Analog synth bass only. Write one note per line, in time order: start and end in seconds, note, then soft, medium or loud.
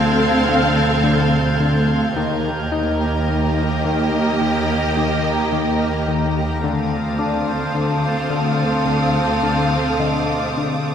0.00 0.26 D3 soft
0.49 0.82 D3 medium
1.04 1.37 D3 medium
1.60 1.94 D3 medium
2.16 2.50 D#3 medium
2.72 3.06 D#4 medium
3.29 3.62 D#3 medium
3.85 4.18 D#3 medium
4.41 4.74 D#3 medium
4.97 5.30 D#3 medium
5.52 5.86 D#3 medium
6.08 6.41 D#3 soft
6.64 6.97 D3 medium
7.19 7.52 D4 medium
7.75 8.08 D3 medium
8.30 8.64 D3 medium
8.86 9.20 D3 soft
9.43 9.77 D3 soft
10.00 10.34 D3 medium
10.57 10.92 D3 soft